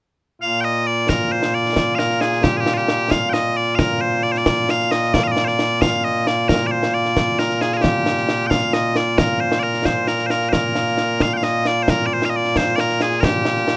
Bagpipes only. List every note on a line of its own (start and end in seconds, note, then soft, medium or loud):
0.42 13.77 A#2 medium
0.42 13.77 A#3 medium
0.42 2.74 F4 medium
0.42 0.61 F5 loud
0.61 0.87 D#5 loud
0.61 0.64 G5 loud
0.87 1.09 D5 loud
1.09 1.32 A#4 medium
1.32 1.55 C5 medium
1.55 1.95 D5 medium
1.95 2.21 A#4 medium
1.95 1.99 F5 medium
2.21 2.44 G#4 medium
2.44 2.57 G4 medium
2.57 2.74 G4 medium
2.57 2.60 G#4 medium
2.74 2.77 F4 medium
2.74 3.11 G4 medium
3.11 3.29 F5 loud
3.29 3.56 D#5 medium
3.29 3.33 G5 medium
3.56 3.75 D5 medium
3.75 4.01 A#4 medium
3.75 3.79 F5 medium
4.01 4.23 C5 medium
4.23 4.32 D5 medium
4.32 4.38 C5 medium
4.38 4.70 D5 medium
4.70 4.91 F5 medium
4.91 5.14 D#5 medium
5.14 5.24 D5 medium
5.24 5.31 D#5 medium
5.24 5.28 F5 medium
5.31 5.45 D5 loud
5.45 5.48 C5 medium
5.45 5.82 D5 loud
5.82 6.04 F5 medium
6.04 6.27 D#5 medium
6.27 6.49 D5 medium
6.49 6.67 A#4 medium
6.67 6.71 D5 medium
6.71 6.94 C5 medium
6.94 7.39 D5 medium
7.39 7.61 A#4 medium
7.61 7.73 G#4 medium
7.73 7.82 G#4 medium
7.73 7.77 A#4 medium
7.82 8.47 G4 medium
8.47 8.74 F5 medium
8.47 8.50 G5 medium
8.74 8.96 D#5 medium
8.96 9.18 D5 medium
9.18 9.40 A#4 medium
9.40 9.59 C5 medium
9.59 9.86 A#4 medium
9.59 9.63 D5 medium
9.86 10.08 C5 medium
10.08 10.27 A#4 medium
10.27 10.31 C5 medium
10.31 10.49 A#4 medium
10.49 11.22 A#4 medium
10.49 10.53 C5 medium
11.22 11.33 F5 medium
11.33 11.44 F5 medium
11.33 11.37 G5 medium
11.44 11.67 D#5 medium
11.67 11.83 D5 loud
11.83 11.90 C5 medium
11.90 12.06 A#4 medium
12.06 12.13 D5 medium
12.13 12.25 C5 medium
12.25 12.30 F5 medium
12.30 12.36 D#5 medium
12.36 12.57 D5 medium
12.57 12.76 C5 loud
12.76 12.80 D5 medium
12.80 13.02 A#4 medium
13.02 13.20 G#4 medium
13.20 13.77 G4 medium
13.20 13.24 A#4 medium